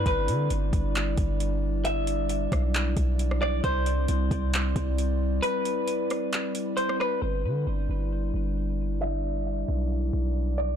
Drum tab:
HH |x-x-x-x-x-x-x---|x-x-x-x-x-x-x---|x-x-x-x-x-x-x---|x-x-x-x-x-x-x---|
CP |--------x-------|--------x-------|--------x-------|--------x-------|
SD |----------------|------r------rr-|----------------|------r------rr-|
BD |o-----o---o-----|------o---o-----|o-----o---o-----|----------------|

HH |----------------|----------------|
CP |----------------|----------------|
SD |----------------|----------------|
BD |----------------|----------------|